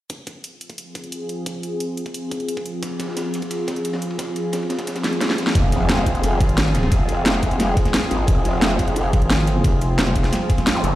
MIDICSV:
0, 0, Header, 1, 7, 480
1, 0, Start_track
1, 0, Key_signature, -4, "minor"
1, 0, Tempo, 340909
1, 139, Time_signature, 4, 2, 24, 8
1, 15420, End_track
2, 0, Start_track
2, 0, Title_t, "Analog synth pad"
2, 0, Program_c, 0, 89
2, 140, Note_on_c, 0, 53, 81
2, 140, Note_on_c, 0, 60, 74
2, 140, Note_on_c, 0, 65, 74
2, 140, Note_on_c, 0, 68, 88
2, 7763, Note_off_c, 0, 53, 0
2, 7763, Note_off_c, 0, 60, 0
2, 7763, Note_off_c, 0, 65, 0
2, 7763, Note_off_c, 0, 68, 0
2, 7819, Note_on_c, 0, 53, 83
2, 7819, Note_on_c, 0, 65, 79
2, 7819, Note_on_c, 0, 68, 91
2, 7820, Note_on_c, 0, 60, 77
2, 15420, Note_off_c, 0, 53, 0
2, 15420, Note_off_c, 0, 60, 0
2, 15420, Note_off_c, 0, 65, 0
2, 15420, Note_off_c, 0, 68, 0
2, 15420, End_track
3, 0, Start_track
3, 0, Title_t, "FM bass"
3, 0, Program_c, 1, 39
3, 9018, Note_on_c, 1, 32, 94
3, 9720, Note_off_c, 1, 32, 0
3, 12859, Note_on_c, 1, 32, 98
3, 13560, Note_off_c, 1, 32, 0
3, 13579, Note_on_c, 1, 29, 100
3, 14040, Note_off_c, 1, 29, 0
3, 14059, Note_on_c, 1, 29, 98
3, 14520, Note_off_c, 1, 29, 0
3, 15260, Note_on_c, 1, 30, 95
3, 15420, Note_off_c, 1, 30, 0
3, 15420, End_track
4, 0, Start_track
4, 0, Title_t, "Wobble bass"
4, 0, Program_c, 2, 39
4, 7818, Note_on_c, 2, 29, 94
4, 9000, Note_off_c, 2, 29, 0
4, 9739, Note_on_c, 2, 29, 95
4, 10920, Note_off_c, 2, 29, 0
4, 11419, Note_on_c, 2, 32, 96
4, 11640, Note_off_c, 2, 32, 0
4, 11659, Note_on_c, 2, 29, 96
4, 12840, Note_off_c, 2, 29, 0
4, 15420, End_track
5, 0, Start_track
5, 0, Title_t, "Impact"
5, 0, Program_c, 3, 103
5, 7818, Note_on_c, 3, 60, 77
5, 9739, Note_off_c, 3, 60, 0
5, 15420, End_track
6, 0, Start_track
6, 0, Title_t, "Zap"
6, 0, Program_c, 4, 103
6, 15139, Note_on_c, 4, 60, 61
6, 15259, Note_off_c, 4, 60, 0
6, 15420, End_track
7, 0, Start_track
7, 0, Title_t, "Drums"
7, 139, Note_on_c, 9, 36, 113
7, 139, Note_on_c, 9, 42, 93
7, 280, Note_off_c, 9, 36, 0
7, 280, Note_off_c, 9, 42, 0
7, 379, Note_on_c, 9, 36, 99
7, 379, Note_on_c, 9, 42, 64
7, 520, Note_off_c, 9, 36, 0
7, 520, Note_off_c, 9, 42, 0
7, 619, Note_on_c, 9, 42, 93
7, 760, Note_off_c, 9, 42, 0
7, 859, Note_on_c, 9, 42, 67
7, 979, Note_off_c, 9, 42, 0
7, 979, Note_on_c, 9, 36, 59
7, 979, Note_on_c, 9, 42, 37
7, 1099, Note_off_c, 9, 42, 0
7, 1099, Note_on_c, 9, 42, 91
7, 1120, Note_off_c, 9, 36, 0
7, 1240, Note_off_c, 9, 42, 0
7, 1339, Note_on_c, 9, 36, 100
7, 1339, Note_on_c, 9, 42, 66
7, 1459, Note_off_c, 9, 42, 0
7, 1459, Note_on_c, 9, 42, 35
7, 1480, Note_off_c, 9, 36, 0
7, 1579, Note_off_c, 9, 42, 0
7, 1579, Note_on_c, 9, 42, 91
7, 1720, Note_off_c, 9, 42, 0
7, 1820, Note_on_c, 9, 42, 66
7, 1960, Note_off_c, 9, 42, 0
7, 2059, Note_on_c, 9, 36, 115
7, 2059, Note_on_c, 9, 42, 90
7, 2200, Note_off_c, 9, 36, 0
7, 2200, Note_off_c, 9, 42, 0
7, 2300, Note_on_c, 9, 42, 64
7, 2440, Note_off_c, 9, 42, 0
7, 2539, Note_on_c, 9, 42, 91
7, 2680, Note_off_c, 9, 42, 0
7, 2779, Note_on_c, 9, 42, 67
7, 2899, Note_off_c, 9, 42, 0
7, 2899, Note_on_c, 9, 36, 61
7, 2899, Note_on_c, 9, 42, 36
7, 3019, Note_off_c, 9, 42, 0
7, 3019, Note_on_c, 9, 42, 89
7, 3040, Note_off_c, 9, 36, 0
7, 3159, Note_off_c, 9, 42, 0
7, 3259, Note_on_c, 9, 36, 104
7, 3259, Note_on_c, 9, 42, 64
7, 3379, Note_off_c, 9, 42, 0
7, 3379, Note_on_c, 9, 42, 36
7, 3400, Note_off_c, 9, 36, 0
7, 3499, Note_off_c, 9, 42, 0
7, 3499, Note_on_c, 9, 42, 90
7, 3619, Note_on_c, 9, 36, 103
7, 3640, Note_off_c, 9, 42, 0
7, 3740, Note_on_c, 9, 42, 64
7, 3760, Note_off_c, 9, 36, 0
7, 3880, Note_off_c, 9, 42, 0
7, 3979, Note_on_c, 9, 36, 121
7, 3979, Note_on_c, 9, 42, 85
7, 3981, Note_on_c, 9, 51, 79
7, 4120, Note_off_c, 9, 36, 0
7, 4120, Note_off_c, 9, 42, 0
7, 4121, Note_off_c, 9, 51, 0
7, 4209, Note_on_c, 9, 38, 58
7, 4219, Note_on_c, 9, 36, 111
7, 4219, Note_on_c, 9, 42, 63
7, 4224, Note_on_c, 9, 51, 64
7, 4342, Note_off_c, 9, 38, 0
7, 4342, Note_on_c, 9, 38, 53
7, 4360, Note_off_c, 9, 36, 0
7, 4360, Note_off_c, 9, 42, 0
7, 4365, Note_off_c, 9, 51, 0
7, 4459, Note_off_c, 9, 38, 0
7, 4459, Note_on_c, 9, 38, 106
7, 4459, Note_on_c, 9, 42, 88
7, 4461, Note_on_c, 9, 51, 86
7, 4600, Note_off_c, 9, 38, 0
7, 4600, Note_off_c, 9, 42, 0
7, 4602, Note_off_c, 9, 51, 0
7, 4699, Note_on_c, 9, 42, 63
7, 4714, Note_on_c, 9, 51, 71
7, 4819, Note_on_c, 9, 36, 63
7, 4820, Note_off_c, 9, 42, 0
7, 4820, Note_on_c, 9, 42, 35
7, 4855, Note_off_c, 9, 51, 0
7, 4935, Note_on_c, 9, 51, 90
7, 4939, Note_off_c, 9, 42, 0
7, 4939, Note_on_c, 9, 42, 87
7, 4960, Note_off_c, 9, 36, 0
7, 5076, Note_off_c, 9, 51, 0
7, 5080, Note_off_c, 9, 42, 0
7, 5174, Note_on_c, 9, 51, 75
7, 5179, Note_on_c, 9, 36, 106
7, 5179, Note_on_c, 9, 38, 97
7, 5179, Note_on_c, 9, 42, 62
7, 5299, Note_off_c, 9, 42, 0
7, 5299, Note_on_c, 9, 42, 35
7, 5315, Note_off_c, 9, 51, 0
7, 5319, Note_off_c, 9, 38, 0
7, 5320, Note_off_c, 9, 36, 0
7, 5418, Note_off_c, 9, 42, 0
7, 5418, Note_on_c, 9, 42, 86
7, 5422, Note_on_c, 9, 51, 58
7, 5537, Note_off_c, 9, 51, 0
7, 5537, Note_on_c, 9, 51, 74
7, 5539, Note_on_c, 9, 38, 96
7, 5559, Note_off_c, 9, 42, 0
7, 5659, Note_on_c, 9, 42, 64
7, 5678, Note_off_c, 9, 51, 0
7, 5680, Note_off_c, 9, 38, 0
7, 5779, Note_on_c, 9, 51, 61
7, 5800, Note_off_c, 9, 42, 0
7, 5893, Note_on_c, 9, 38, 100
7, 5897, Note_off_c, 9, 51, 0
7, 5897, Note_on_c, 9, 51, 68
7, 5899, Note_on_c, 9, 36, 116
7, 5899, Note_on_c, 9, 42, 84
7, 6034, Note_off_c, 9, 38, 0
7, 6038, Note_off_c, 9, 51, 0
7, 6040, Note_off_c, 9, 36, 0
7, 6040, Note_off_c, 9, 42, 0
7, 6139, Note_on_c, 9, 42, 61
7, 6140, Note_on_c, 9, 51, 54
7, 6280, Note_off_c, 9, 42, 0
7, 6281, Note_off_c, 9, 51, 0
7, 6373, Note_on_c, 9, 51, 87
7, 6379, Note_on_c, 9, 42, 88
7, 6380, Note_on_c, 9, 38, 107
7, 6509, Note_off_c, 9, 51, 0
7, 6509, Note_on_c, 9, 51, 43
7, 6520, Note_off_c, 9, 42, 0
7, 6521, Note_off_c, 9, 38, 0
7, 6614, Note_off_c, 9, 51, 0
7, 6614, Note_on_c, 9, 51, 84
7, 6615, Note_on_c, 9, 38, 102
7, 6618, Note_on_c, 9, 42, 64
7, 6739, Note_off_c, 9, 42, 0
7, 6739, Note_on_c, 9, 36, 62
7, 6739, Note_on_c, 9, 42, 34
7, 6743, Note_off_c, 9, 38, 0
7, 6743, Note_on_c, 9, 38, 97
7, 6746, Note_off_c, 9, 51, 0
7, 6746, Note_on_c, 9, 51, 69
7, 6860, Note_off_c, 9, 42, 0
7, 6860, Note_on_c, 9, 42, 86
7, 6862, Note_off_c, 9, 51, 0
7, 6862, Note_on_c, 9, 51, 73
7, 6870, Note_off_c, 9, 38, 0
7, 6870, Note_on_c, 9, 38, 93
7, 6879, Note_off_c, 9, 36, 0
7, 6976, Note_off_c, 9, 38, 0
7, 6976, Note_on_c, 9, 38, 93
7, 6979, Note_off_c, 9, 42, 0
7, 6979, Note_on_c, 9, 42, 34
7, 6982, Note_off_c, 9, 51, 0
7, 6982, Note_on_c, 9, 51, 78
7, 7096, Note_off_c, 9, 51, 0
7, 7096, Note_on_c, 9, 51, 64
7, 7099, Note_off_c, 9, 38, 0
7, 7099, Note_off_c, 9, 42, 0
7, 7099, Note_on_c, 9, 38, 60
7, 7099, Note_on_c, 9, 42, 62
7, 7219, Note_off_c, 9, 42, 0
7, 7219, Note_on_c, 9, 42, 33
7, 7237, Note_off_c, 9, 51, 0
7, 7240, Note_off_c, 9, 38, 0
7, 7329, Note_on_c, 9, 38, 120
7, 7339, Note_off_c, 9, 38, 0
7, 7339, Note_off_c, 9, 42, 0
7, 7339, Note_on_c, 9, 38, 75
7, 7339, Note_on_c, 9, 42, 84
7, 7346, Note_on_c, 9, 51, 87
7, 7459, Note_off_c, 9, 38, 0
7, 7459, Note_on_c, 9, 38, 71
7, 7480, Note_off_c, 9, 42, 0
7, 7487, Note_off_c, 9, 51, 0
7, 7574, Note_off_c, 9, 38, 0
7, 7574, Note_on_c, 9, 38, 90
7, 7578, Note_on_c, 9, 51, 66
7, 7579, Note_on_c, 9, 42, 61
7, 7633, Note_off_c, 9, 38, 0
7, 7633, Note_on_c, 9, 38, 84
7, 7638, Note_off_c, 9, 51, 0
7, 7638, Note_on_c, 9, 51, 63
7, 7694, Note_off_c, 9, 51, 0
7, 7694, Note_on_c, 9, 51, 67
7, 7698, Note_off_c, 9, 38, 0
7, 7698, Note_on_c, 9, 38, 87
7, 7699, Note_off_c, 9, 38, 0
7, 7699, Note_on_c, 9, 38, 85
7, 7720, Note_off_c, 9, 42, 0
7, 7749, Note_off_c, 9, 51, 0
7, 7749, Note_on_c, 9, 51, 65
7, 7759, Note_off_c, 9, 38, 0
7, 7759, Note_on_c, 9, 38, 92
7, 7814, Note_off_c, 9, 51, 0
7, 7814, Note_on_c, 9, 51, 88
7, 7818, Note_on_c, 9, 42, 96
7, 7819, Note_on_c, 9, 36, 124
7, 7900, Note_off_c, 9, 38, 0
7, 7954, Note_off_c, 9, 51, 0
7, 7959, Note_off_c, 9, 36, 0
7, 7959, Note_off_c, 9, 42, 0
7, 8059, Note_on_c, 9, 42, 69
7, 8059, Note_on_c, 9, 51, 73
7, 8060, Note_on_c, 9, 38, 55
7, 8170, Note_off_c, 9, 38, 0
7, 8170, Note_on_c, 9, 38, 48
7, 8199, Note_off_c, 9, 42, 0
7, 8200, Note_off_c, 9, 51, 0
7, 8296, Note_off_c, 9, 38, 0
7, 8296, Note_on_c, 9, 38, 115
7, 8299, Note_off_c, 9, 38, 0
7, 8299, Note_on_c, 9, 38, 123
7, 8299, Note_on_c, 9, 42, 99
7, 8300, Note_on_c, 9, 51, 88
7, 8419, Note_on_c, 9, 40, 50
7, 8440, Note_off_c, 9, 38, 0
7, 8440, Note_off_c, 9, 42, 0
7, 8441, Note_off_c, 9, 51, 0
7, 8533, Note_on_c, 9, 51, 65
7, 8539, Note_on_c, 9, 36, 63
7, 8539, Note_on_c, 9, 42, 70
7, 8559, Note_off_c, 9, 40, 0
7, 8659, Note_off_c, 9, 42, 0
7, 8659, Note_on_c, 9, 42, 39
7, 8674, Note_off_c, 9, 51, 0
7, 8679, Note_off_c, 9, 36, 0
7, 8779, Note_off_c, 9, 42, 0
7, 8779, Note_on_c, 9, 42, 99
7, 8782, Note_on_c, 9, 51, 91
7, 8920, Note_off_c, 9, 42, 0
7, 8923, Note_off_c, 9, 51, 0
7, 9019, Note_on_c, 9, 36, 106
7, 9020, Note_on_c, 9, 42, 72
7, 9022, Note_on_c, 9, 51, 73
7, 9139, Note_off_c, 9, 42, 0
7, 9139, Note_on_c, 9, 42, 38
7, 9160, Note_off_c, 9, 36, 0
7, 9162, Note_off_c, 9, 51, 0
7, 9257, Note_on_c, 9, 51, 89
7, 9259, Note_off_c, 9, 42, 0
7, 9259, Note_on_c, 9, 38, 119
7, 9259, Note_on_c, 9, 42, 96
7, 9268, Note_off_c, 9, 38, 0
7, 9268, Note_on_c, 9, 38, 114
7, 9378, Note_off_c, 9, 38, 0
7, 9378, Note_on_c, 9, 38, 59
7, 9398, Note_off_c, 9, 51, 0
7, 9400, Note_off_c, 9, 42, 0
7, 9500, Note_on_c, 9, 42, 68
7, 9502, Note_off_c, 9, 38, 0
7, 9502, Note_on_c, 9, 38, 104
7, 9509, Note_on_c, 9, 51, 86
7, 9613, Note_off_c, 9, 51, 0
7, 9613, Note_on_c, 9, 51, 75
7, 9616, Note_off_c, 9, 38, 0
7, 9616, Note_on_c, 9, 38, 107
7, 9640, Note_off_c, 9, 42, 0
7, 9738, Note_off_c, 9, 51, 0
7, 9738, Note_on_c, 9, 51, 81
7, 9739, Note_on_c, 9, 36, 127
7, 9739, Note_on_c, 9, 42, 94
7, 9757, Note_off_c, 9, 38, 0
7, 9879, Note_off_c, 9, 51, 0
7, 9880, Note_off_c, 9, 36, 0
7, 9880, Note_off_c, 9, 42, 0
7, 9974, Note_on_c, 9, 51, 77
7, 9979, Note_on_c, 9, 42, 67
7, 10114, Note_off_c, 9, 51, 0
7, 10120, Note_off_c, 9, 42, 0
7, 10217, Note_on_c, 9, 38, 109
7, 10219, Note_off_c, 9, 38, 0
7, 10219, Note_on_c, 9, 38, 127
7, 10219, Note_on_c, 9, 42, 96
7, 10221, Note_on_c, 9, 51, 90
7, 10334, Note_off_c, 9, 51, 0
7, 10334, Note_on_c, 9, 51, 44
7, 10339, Note_on_c, 9, 40, 50
7, 10359, Note_off_c, 9, 38, 0
7, 10359, Note_off_c, 9, 42, 0
7, 10452, Note_off_c, 9, 51, 0
7, 10452, Note_on_c, 9, 51, 70
7, 10458, Note_on_c, 9, 42, 67
7, 10459, Note_on_c, 9, 36, 64
7, 10480, Note_off_c, 9, 40, 0
7, 10579, Note_off_c, 9, 42, 0
7, 10579, Note_on_c, 9, 42, 38
7, 10592, Note_off_c, 9, 51, 0
7, 10600, Note_off_c, 9, 36, 0
7, 10691, Note_on_c, 9, 51, 83
7, 10699, Note_off_c, 9, 42, 0
7, 10699, Note_on_c, 9, 40, 59
7, 10699, Note_on_c, 9, 42, 95
7, 10818, Note_off_c, 9, 51, 0
7, 10818, Note_on_c, 9, 51, 44
7, 10839, Note_off_c, 9, 40, 0
7, 10839, Note_off_c, 9, 42, 0
7, 10938, Note_on_c, 9, 42, 66
7, 10939, Note_on_c, 9, 36, 107
7, 10946, Note_off_c, 9, 51, 0
7, 10946, Note_on_c, 9, 51, 76
7, 11059, Note_off_c, 9, 42, 0
7, 11059, Note_on_c, 9, 40, 36
7, 11059, Note_on_c, 9, 42, 37
7, 11080, Note_off_c, 9, 36, 0
7, 11087, Note_off_c, 9, 51, 0
7, 11178, Note_off_c, 9, 42, 0
7, 11178, Note_on_c, 9, 38, 123
7, 11178, Note_on_c, 9, 42, 94
7, 11179, Note_off_c, 9, 38, 0
7, 11179, Note_on_c, 9, 38, 127
7, 11183, Note_on_c, 9, 51, 89
7, 11199, Note_off_c, 9, 40, 0
7, 11319, Note_off_c, 9, 38, 0
7, 11319, Note_off_c, 9, 42, 0
7, 11324, Note_off_c, 9, 51, 0
7, 11419, Note_on_c, 9, 42, 67
7, 11420, Note_on_c, 9, 51, 71
7, 11560, Note_off_c, 9, 42, 0
7, 11561, Note_off_c, 9, 51, 0
7, 11647, Note_on_c, 9, 51, 79
7, 11658, Note_on_c, 9, 42, 91
7, 11659, Note_on_c, 9, 36, 127
7, 11788, Note_off_c, 9, 51, 0
7, 11799, Note_off_c, 9, 42, 0
7, 11800, Note_off_c, 9, 36, 0
7, 11895, Note_on_c, 9, 51, 64
7, 11899, Note_on_c, 9, 38, 56
7, 11899, Note_on_c, 9, 42, 66
7, 12015, Note_off_c, 9, 38, 0
7, 12015, Note_on_c, 9, 38, 51
7, 12036, Note_off_c, 9, 51, 0
7, 12040, Note_off_c, 9, 42, 0
7, 12136, Note_off_c, 9, 38, 0
7, 12136, Note_on_c, 9, 38, 115
7, 12138, Note_off_c, 9, 38, 0
7, 12138, Note_on_c, 9, 38, 126
7, 12138, Note_on_c, 9, 42, 92
7, 12144, Note_on_c, 9, 51, 98
7, 12259, Note_on_c, 9, 40, 51
7, 12279, Note_off_c, 9, 38, 0
7, 12279, Note_off_c, 9, 42, 0
7, 12284, Note_off_c, 9, 51, 0
7, 12377, Note_on_c, 9, 51, 64
7, 12378, Note_on_c, 9, 42, 67
7, 12379, Note_on_c, 9, 36, 66
7, 12400, Note_off_c, 9, 40, 0
7, 12498, Note_off_c, 9, 42, 0
7, 12498, Note_on_c, 9, 42, 37
7, 12518, Note_off_c, 9, 51, 0
7, 12520, Note_off_c, 9, 36, 0
7, 12611, Note_on_c, 9, 51, 90
7, 12619, Note_off_c, 9, 42, 0
7, 12619, Note_on_c, 9, 42, 91
7, 12752, Note_off_c, 9, 51, 0
7, 12759, Note_off_c, 9, 42, 0
7, 12859, Note_on_c, 9, 36, 111
7, 12859, Note_on_c, 9, 42, 65
7, 12859, Note_on_c, 9, 51, 69
7, 12979, Note_off_c, 9, 42, 0
7, 12979, Note_on_c, 9, 42, 36
7, 13000, Note_off_c, 9, 36, 0
7, 13000, Note_off_c, 9, 51, 0
7, 13099, Note_off_c, 9, 42, 0
7, 13099, Note_on_c, 9, 38, 127
7, 13099, Note_on_c, 9, 42, 92
7, 13101, Note_on_c, 9, 51, 101
7, 13102, Note_off_c, 9, 38, 0
7, 13102, Note_on_c, 9, 38, 127
7, 13216, Note_off_c, 9, 38, 0
7, 13216, Note_on_c, 9, 38, 56
7, 13239, Note_off_c, 9, 42, 0
7, 13242, Note_off_c, 9, 51, 0
7, 13339, Note_on_c, 9, 42, 65
7, 13344, Note_on_c, 9, 51, 70
7, 13357, Note_off_c, 9, 38, 0
7, 13479, Note_off_c, 9, 42, 0
7, 13485, Note_off_c, 9, 51, 0
7, 13576, Note_on_c, 9, 51, 83
7, 13579, Note_on_c, 9, 36, 127
7, 13579, Note_on_c, 9, 42, 88
7, 13717, Note_off_c, 9, 51, 0
7, 13719, Note_off_c, 9, 42, 0
7, 13720, Note_off_c, 9, 36, 0
7, 13819, Note_on_c, 9, 42, 65
7, 13823, Note_on_c, 9, 51, 63
7, 13960, Note_off_c, 9, 42, 0
7, 13963, Note_off_c, 9, 51, 0
7, 14059, Note_on_c, 9, 38, 112
7, 14060, Note_off_c, 9, 38, 0
7, 14060, Note_on_c, 9, 38, 126
7, 14060, Note_on_c, 9, 42, 93
7, 14063, Note_on_c, 9, 51, 100
7, 14168, Note_off_c, 9, 51, 0
7, 14168, Note_on_c, 9, 51, 48
7, 14179, Note_on_c, 9, 40, 48
7, 14201, Note_off_c, 9, 38, 0
7, 14201, Note_off_c, 9, 42, 0
7, 14300, Note_on_c, 9, 36, 63
7, 14300, Note_on_c, 9, 42, 65
7, 14307, Note_off_c, 9, 51, 0
7, 14307, Note_on_c, 9, 51, 65
7, 14320, Note_off_c, 9, 40, 0
7, 14419, Note_off_c, 9, 42, 0
7, 14419, Note_on_c, 9, 38, 39
7, 14419, Note_on_c, 9, 42, 35
7, 14440, Note_off_c, 9, 36, 0
7, 14447, Note_off_c, 9, 51, 0
7, 14537, Note_on_c, 9, 51, 93
7, 14539, Note_off_c, 9, 42, 0
7, 14539, Note_on_c, 9, 40, 55
7, 14539, Note_on_c, 9, 42, 90
7, 14560, Note_off_c, 9, 38, 0
7, 14667, Note_off_c, 9, 51, 0
7, 14667, Note_on_c, 9, 51, 47
7, 14680, Note_off_c, 9, 40, 0
7, 14680, Note_off_c, 9, 42, 0
7, 14779, Note_on_c, 9, 36, 111
7, 14779, Note_on_c, 9, 42, 64
7, 14782, Note_off_c, 9, 51, 0
7, 14782, Note_on_c, 9, 51, 70
7, 14899, Note_off_c, 9, 42, 0
7, 14899, Note_on_c, 9, 40, 35
7, 14899, Note_on_c, 9, 42, 35
7, 14920, Note_off_c, 9, 36, 0
7, 14923, Note_off_c, 9, 51, 0
7, 15019, Note_off_c, 9, 42, 0
7, 15019, Note_on_c, 9, 38, 122
7, 15019, Note_on_c, 9, 42, 89
7, 15021, Note_off_c, 9, 38, 0
7, 15021, Note_on_c, 9, 38, 125
7, 15025, Note_on_c, 9, 51, 84
7, 15040, Note_off_c, 9, 40, 0
7, 15160, Note_off_c, 9, 42, 0
7, 15162, Note_off_c, 9, 38, 0
7, 15166, Note_off_c, 9, 51, 0
7, 15260, Note_on_c, 9, 42, 65
7, 15268, Note_on_c, 9, 51, 76
7, 15401, Note_off_c, 9, 42, 0
7, 15409, Note_off_c, 9, 51, 0
7, 15420, End_track
0, 0, End_of_file